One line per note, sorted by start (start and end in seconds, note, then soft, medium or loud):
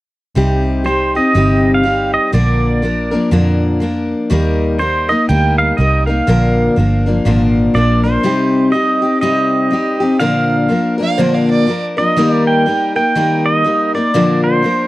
0.35 1.17 C2 medium
0.35 0.85 C3 medium
0.35 0.83 G3 medium
0.35 0.85 C4 medium
0.35 0.85 D#4 medium
0.35 0.86 G4 medium
0.84 1.15 G3 medium
0.84 1.15 C4 soft
0.84 1.15 D#4 soft
0.84 1.14 G4 medium
0.84 1.16 C5 medium
1.15 1.34 C4 soft
1.15 1.35 D#4 soft
1.15 1.35 G4 soft
1.15 1.71 D#5 medium
1.34 2.16 G1 medium
1.34 1.84 C3 medium
1.34 1.82 G3 medium
1.34 1.83 C4 medium
1.34 1.84 D#4 medium
1.34 1.85 G4 medium
1.74 2.11 F5 medium
1.83 2.33 G3 medium
1.83 2.33 C4 soft
1.83 2.34 D#4 medium
1.83 2.34 G4 medium
2.14 2.34 D#5 medium
2.32 3.15 A#1 medium
2.32 2.82 A#2 medium
2.32 2.83 D3 medium
2.32 2.81 F3 medium
2.32 2.83 A#3 medium
2.32 2.83 D4 medium
2.32 2.85 A#4 medium
2.32 3.28 D5 medium
2.82 3.12 F3 soft
2.82 3.12 A#3 medium
2.82 3.11 D4 medium
2.82 3.10 A#4 medium
3.11 3.31 F3 soft
3.11 3.31 A#3 soft
3.11 3.32 D4 soft
3.11 3.31 A#4 soft
3.31 4.13 F2 medium
3.31 3.81 A#2 medium
3.31 3.81 D3 medium
3.31 3.79 F3 medium
3.31 3.81 A#3 medium
3.31 3.81 D4 medium
3.31 3.82 A#4 medium
3.80 4.30 F3 medium
3.80 4.31 A#3 medium
3.80 4.31 D4 medium
3.80 4.32 A#4 medium
4.30 5.12 D#2 medium
4.30 4.79 D#3 medium
4.30 4.77 G3 medium
4.30 4.80 A#3 medium
4.30 4.80 D#4 medium
4.30 4.82 A#4 medium
4.79 5.09 G3 medium
4.79 5.10 A#3 medium
4.79 5.09 D#4 medium
4.79 5.07 A#4 medium
4.79 5.10 C5 medium
5.08 5.28 A#3 soft
5.08 5.29 D#4 soft
5.08 5.29 A#4 soft
5.08 5.28 D#5 medium
5.29 5.71 D2 medium
5.29 5.76 G3 medium
5.29 5.78 A#3 medium
5.29 5.79 D#4 medium
5.29 5.79 A#4 medium
5.29 5.58 G5 medium
5.58 5.79 F5 medium
5.77 6.20 C2 medium
5.77 6.08 G3 medium
5.77 6.08 A#3 medium
5.77 6.08 D#4 soft
5.77 6.06 A#4 medium
5.77 6.06 D#5 medium
6.06 6.27 A#3 soft
6.06 6.28 D#4 soft
6.06 6.27 A#4 soft
6.06 7.70 F5 medium
6.27 6.68 A#1 medium
6.27 6.76 A#2 medium
6.27 6.77 D3 medium
6.27 6.75 F3 medium
6.27 6.76 A#3 medium
6.27 6.77 D4 medium
6.27 6.78 A#4 medium
6.76 7.19 G1 medium
6.76 7.06 F3 medium
6.76 7.07 A#3 medium
6.76 7.06 D4 medium
6.76 7.05 A#4 medium
7.06 7.25 F3 soft
7.06 7.25 A#3 soft
7.06 7.26 D4 soft
7.06 7.26 A#4 soft
7.25 7.68 G#1 medium
7.25 7.75 A#2 medium
7.25 7.75 D3 medium
7.25 7.73 F3 medium
7.25 7.74 A#3 medium
7.25 7.75 D4 medium
7.25 7.76 A#4 medium
7.74 8.17 A#1 medium
7.74 8.04 F3 medium
7.74 8.05 A#3 medium
7.74 8.04 D4 medium
7.74 8.02 A#4 medium
7.74 8.05 D5 medium
8.04 8.23 F3 soft
8.04 8.24 A#3 soft
8.04 8.24 D4 soft
8.04 8.24 A#4 soft
8.04 8.69 C5 medium
8.23 8.73 C3 medium
8.23 8.71 G3 medium
8.23 8.72 C4 medium
8.23 8.73 D#4 medium
8.23 8.74 G4 medium
8.72 9.02 G3 medium
8.72 9.03 C4 medium
8.72 9.02 D#4 medium
8.72 9.01 G4 medium
8.72 9.20 D#5 medium
9.02 9.22 C4 soft
9.02 9.22 D#4 soft
9.02 9.22 G4 soft
9.21 9.71 C3 medium
9.21 9.69 G3 medium
9.21 9.70 C4 medium
9.21 9.71 D#4 medium
9.21 9.72 G4 medium
9.21 10.19 D#5 medium
9.71 10.01 G3 medium
9.71 10.01 C4 soft
9.71 10.01 D#4 soft
9.71 9.99 G4 medium
10.00 10.21 C4 soft
10.00 10.21 D#4 soft
10.00 10.20 G4 medium
10.19 10.69 A#2 medium
10.19 10.70 D3 medium
10.19 10.67 F3 medium
10.19 10.69 A#3 medium
10.19 10.69 D4 medium
10.19 10.71 A#4 medium
10.19 10.95 F5 medium
10.69 10.99 F3 soft
10.69 10.99 A#3 medium
10.69 10.98 D4 medium
10.69 10.97 A#4 medium
10.98 11.18 F3 soft
10.98 11.18 A#3 soft
10.98 11.19 D4 soft
10.98 11.18 A#4 medium
11.03 11.20 F5 medium
11.18 11.68 A#2 medium
11.18 11.68 D3 medium
11.18 11.66 F3 medium
11.18 11.67 A#3 medium
11.18 11.68 D4 medium
11.18 11.69 A#4 medium
11.18 11.36 C5 medium
11.34 11.50 F5 medium
11.51 11.81 D5 medium
11.67 11.97 F3 medium
11.67 11.98 A#3 medium
11.67 11.97 D4 medium
11.67 11.96 A#4 medium
11.97 12.17 F3 soft
11.97 12.17 A#3 soft
11.97 12.17 D4 soft
11.97 12.17 A#4 soft
11.97 12.32 D#5 medium
12.17 12.66 D#3 medium
12.17 12.65 G3 medium
12.17 12.67 A#3 medium
12.17 12.67 D#4 medium
12.17 12.69 A#4 medium
12.32 12.44 D5 medium
12.47 12.93 G5 medium
12.66 12.96 G3 medium
12.66 12.97 A#3 soft
12.66 12.96 D#4 medium
12.66 12.94 A#4 medium
12.96 13.15 A#3 soft
12.96 13.16 D#4 soft
12.96 13.15 A#4 soft
12.96 13.47 G5 medium
13.15 13.65 D#3 medium
13.15 13.63 G3 medium
13.15 13.64 A#3 medium
13.15 13.65 D#4 medium
13.15 13.66 A#4 medium
13.46 13.94 D#5 loud
13.64 13.94 G3 medium
13.64 13.95 A#3 medium
13.64 13.95 D#4 medium
13.64 13.93 A#4 medium
13.94 14.14 A#3 soft
13.94 14.15 D#4 soft
13.94 14.14 A#4 soft
13.94 14.40 D5 medium
14.14 14.63 A#2 medium
14.14 14.63 D3 medium
14.14 14.61 F3 medium
14.14 14.63 A#3 medium
14.14 14.64 D4 medium
14.14 14.64 A#4 medium
14.44 14.87 C5 medium
14.62 14.87 F3 medium
14.62 14.87 A#3 medium
14.62 14.87 D4 medium
14.62 14.87 A#4 medium